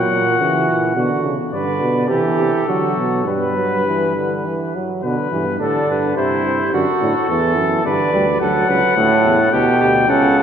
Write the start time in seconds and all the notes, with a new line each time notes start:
Already playing: A#2 F#3 F#4 F#5
0.11 A#2
0.40 C#3 E3
0.69 A#2
0.96 B2 D3 F#4
1.24 C#3
1.53 G2 D3 B4 D5
1.81 B2
2.08 C3 E3 G4 A4
2.38 C3
2.67 D3 F#3 F#4
2.96 B2
3.26 G2 G3 B4
3.56 F#3
3.86 E3
4.16 D3
4.46 E3
4.75 F#3
5.03 B2 D3 B4
5.32 G2 E3
5.60 A2 D3 D4 A4
5.89 G2 B4
6.16 G2 C3 E4 C5
6.46 C3
6.73 F#2 D3 F#4 A4
7.01 A2 D3
7.29 E2 E3 A4
7.57 F#2
7.86 G2 D3 B4 D5
8.13 D2 G3
8.41 D2 F#3 A4 F#5
8.69 C#2 B4
8.96 D2 A2 A4
9.25 E2
9.52 D2 B2 G4 G5
9.80 D2 G4
10.08 C#2 C#3 A4 F#5
10.39 A4